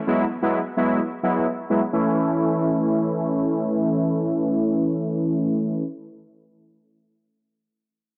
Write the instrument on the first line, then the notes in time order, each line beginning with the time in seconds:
analog polysynth
0.07 F#3 G#3 B3 E4
0.42 F#3 G#3 B3 E4
0.77 F#3 G#3 B3 E4
1.23 F#3 G#3 B3 E4
1.70 F#3 G#3 B3 E4
1.93 E3 A3 C#4 E4